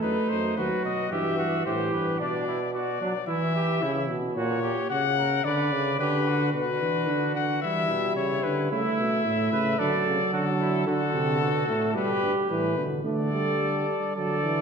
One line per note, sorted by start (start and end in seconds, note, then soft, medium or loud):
0.00 0.15 F#2 medium
0.00 0.55 A3 medium
0.00 0.55 D#4 medium
0.00 0.31 B4 medium
0.29 0.57 F#2 medium
0.29 0.56 C5 medium
0.57 0.69 D#2 medium
0.57 1.10 F#3 medium
0.57 1.10 F#4 medium
0.57 0.84 B4 medium
0.84 1.10 B2 medium
0.84 1.11 D#5 medium
1.10 1.64 G2 medium
1.10 1.65 E3 medium
1.10 1.37 G4 medium
1.10 1.65 E5 medium
1.38 1.65 F#4 medium
1.65 1.92 A2 medium
1.65 2.19 E3 medium
1.65 2.21 G4 medium
1.65 1.95 C5 medium
1.93 2.19 G2 medium
1.93 2.19 B4 medium
2.20 2.99 B2 medium
2.20 2.47 D4 medium
2.20 2.73 D5 medium
2.47 2.59 E4 medium
2.73 3.00 F#4 medium
2.73 3.26 D5 medium
3.01 3.13 F#3 medium
3.01 3.13 D4 medium
3.27 3.81 E3 medium
3.27 3.54 E4 medium
3.27 4.06 E5 medium
3.55 3.84 G4 medium
3.82 4.11 C#3 medium
3.82 4.17 E4 medium
4.09 4.36 B2 medium
4.35 4.70 A#2 medium
4.35 4.61 F#4 medium
4.35 4.86 C#5 medium
4.63 4.89 G4 medium
4.90 5.41 C#3 medium
4.90 5.02 F#4 medium
4.90 5.46 F#5 medium
5.18 5.44 A#4 medium
5.44 5.73 D3 medium
5.44 5.98 B4 medium
5.44 5.99 D5 medium
5.71 5.98 C#3 medium
5.99 6.52 D3 medium
5.99 6.29 G4 medium
5.99 6.53 B4 medium
6.28 6.54 F#4 medium
6.53 6.82 B2 medium
6.53 7.59 D4 medium
6.53 7.59 F#4 medium
6.53 7.31 B4 medium
6.81 7.10 E3 medium
7.08 7.35 D3 medium
7.35 7.62 D3 medium
7.35 7.62 F#5 medium
7.62 7.89 E3 medium
7.62 8.69 G3 medium
7.62 8.16 E4 medium
7.62 8.16 E5 medium
7.89 8.18 B2 medium
8.17 8.43 C#3 medium
8.17 8.70 E4 medium
8.17 8.45 C#5 medium
8.43 8.70 D3 medium
8.43 8.71 B4 medium
8.71 8.83 C#3 medium
8.71 9.24 A3 medium
8.71 9.51 E4 medium
8.71 9.80 E5 medium
8.98 9.25 B2 medium
9.25 9.51 A2 medium
9.25 9.79 A3 medium
9.52 9.79 C#3 medium
9.52 9.81 B4 medium
9.79 9.91 D3 medium
9.79 10.89 F#3 medium
9.79 10.33 A4 medium
9.79 10.33 D5 medium
10.06 10.18 C#3 medium
10.33 10.86 D3 medium
10.33 10.45 F#4 medium
10.33 10.86 A4 medium
10.60 10.87 E4 medium
10.87 11.13 D3 medium
10.87 11.67 D3 medium
10.87 11.40 F#4 medium
10.87 11.93 A4 medium
11.14 11.40 C3 medium
11.41 11.67 B2 medium
11.41 11.93 F#4 medium
11.68 11.94 A2 medium
11.68 11.96 A3 medium
11.94 12.21 B2 medium
11.94 12.49 G3 medium
11.94 12.74 G4 medium
11.94 12.34 B4 medium
12.22 12.34 G2 medium
12.49 12.78 A2 medium
12.49 12.79 E3 medium
12.49 12.85 B4 medium
12.77 13.04 B2 medium
12.77 13.04 D3 medium
13.04 13.85 D3 medium
13.04 13.32 A3 medium
13.04 14.11 A4 medium
13.04 14.12 D5 medium
13.32 13.60 G3 medium
13.60 13.95 G3 medium
14.16 14.61 D3 medium
14.16 14.44 F#3 medium
14.16 14.61 A4 medium
14.16 14.61 D5 medium
14.43 14.61 E3 medium